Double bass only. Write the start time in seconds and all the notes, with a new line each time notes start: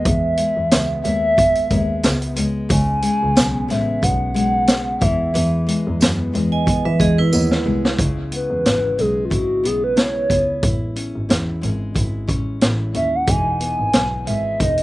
0.06 E2
0.57 E2
0.72 C#2
1.05 D#2
1.71 D#2
2.05 C#2
2.38 C#2
2.70 C#2
3.23 C#2
3.38 B1
3.71 A1
4.03 B1
4.37 B1
5.02 E2
5.36 E2
5.88 E2
6.02 F#2
6.35 E2
6.86 E3
7.00 E2
7.19 E2
7.34 D#2
7.67 C2
7.99 C#2
8.51 E2
8.66 G#1
8.99 B1
9.31 G#1
9.65 B1
10.30 C#2
10.63 A1
11.16 G#1
11.30 E2
11.64 G#1
11.96 G#1
12.29 A1
12.62 A1
12.95 D#2
13.28 E1
13.79 G#1
13.95 B1
14.28 G#1
14.60 E1